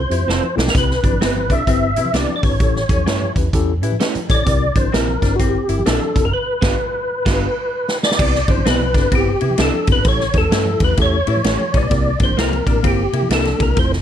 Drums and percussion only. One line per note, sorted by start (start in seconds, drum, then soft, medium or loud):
0.11 closed hi-hat medium
0.20 high conga medium
0.29 snare medium
0.44 muted conga soft
0.44 high conga medium
0.58 snare loud
0.58 low conga medium
0.68 snare medium
0.75 kick loud
0.75 closed hi-hat medium
0.75 muted conga soft
0.90 snare soft
0.90 muted conga soft
1.04 kick medium
1.04 closed hi-hat medium
1.04 high conga medium
1.12 high conga medium
1.21 snare loud
1.21 closed hi-hat medium
1.21 muted conga soft
1.35 muted conga soft
1.35 high conga medium
1.50 kick medium
1.50 closed hi-hat medium
1.50 low conga medium
1.67 kick medium
1.67 closed hi-hat medium
1.67 low conga medium
1.82 muted conga soft
1.96 closed hi-hat medium
2.05 high conga medium
2.14 snare loud
2.14 closed hi-hat medium
2.29 muted conga soft
2.29 high conga medium
2.43 kick loud
2.43 open hi-hat medium
2.43 low conga medium
2.60 kick loud
2.60 closed hi-hat medium
2.75 snare soft
2.75 muted conga soft
2.89 kick loud
2.89 closed hi-hat medium
2.89 high conga medium
2.98 high conga medium
3.07 snare loud
3.07 closed hi-hat medium
3.21 high conga medium
3.36 kick medium
3.36 closed hi-hat medium
3.36 low conga medium
3.53 kick medium
3.53 closed hi-hat medium
3.53 muted conga soft
3.53 low conga medium
3.83 closed hi-hat medium
3.92 high conga medium
4.00 snare loud
4.00 closed hi-hat medium
4.00 muted conga soft
4.15 closed hi-hat medium
4.15 muted conga soft
4.15 high conga medium
4.30 kick loud
4.30 closed hi-hat medium
4.30 low conga medium
4.46 kick loud
4.46 closed hi-hat medium
4.75 kick medium
4.75 closed hi-hat medium
4.75 high conga medium
4.85 high conga medium
4.94 snare loud
4.94 closed hi-hat medium
5.08 high conga medium
5.22 kick medium
5.22 snare soft
5.22 closed hi-hat medium
5.22 low conga medium
5.39 kick medium
5.39 closed hi-hat medium
5.39 low conga medium
5.56 muted conga soft
5.69 closed hi-hat medium
5.79 high conga medium
5.86 snare loud
5.86 closed hi-hat loud
5.86 muted conga soft
6.02 high conga medium
6.16 kick loud
6.16 closed hi-hat medium
6.16 low conga medium
6.62 kick loud
6.62 snare loud
6.62 crash medium
7.26 kick loud
7.26 snare medium
7.26 crash medium
7.88 snare medium
8.03 snare loud
8.11 snare medium
8.19 kick loud
8.19 crash loud
8.19 muted conga soft
8.35 snare soft
8.48 kick medium
8.48 ride medium
8.48 high conga medium
8.57 high conga medium
8.66 snare loud
8.66 ride medium
8.80 high conga medium
8.94 kick medium
8.94 snare soft
8.94 ride medium
8.94 low conga medium
9.12 kick medium
9.12 ride medium
9.12 muted conga soft
9.12 low conga medium
9.41 ride medium
9.50 high conga medium
9.58 snare loud
9.58 ride medium
9.74 high conga medium
9.87 kick loud
9.87 ride medium
9.87 low conga medium
10.05 kick loud
10.05 ride medium
10.20 snare soft
10.20 muted conga soft
10.33 kick medium
10.33 ride medium
10.33 high conga medium
10.42 high conga medium
10.52 snare loud
10.52 ride medium
10.66 high conga medium
10.80 kick medium
10.80 ride medium
10.80 low conga medium
10.97 kick medium
10.97 ride medium
10.97 low conga medium
11.27 ride medium
11.36 high conga medium
11.44 snare loud
11.44 ride medium
11.60 high conga medium
11.74 kick medium
11.74 ride medium
11.74 low conga medium
11.91 kick loud
11.91 ride medium
11.91 muted conga soft
12.05 muted conga soft
12.19 kick loud
12.19 ride medium
12.19 high conga medium
12.29 high conga medium
12.38 snare loud
12.38 ride medium
12.38 muted conga soft
12.52 ride soft
12.52 muted conga soft
12.52 high conga medium
12.67 kick medium
12.67 ride medium
12.67 low conga medium
12.84 kick medium
12.84 ride medium
12.84 low conga medium
13.00 muted conga soft
13.13 ride medium
13.23 high conga medium
13.30 snare loud
13.30 ride medium
13.45 snare soft
13.45 ride soft
13.45 high conga medium
13.60 kick loud
13.60 ride medium
13.60 low conga medium
13.76 kick loud
13.76 ride medium
13.92 snare soft
13.92 muted conga soft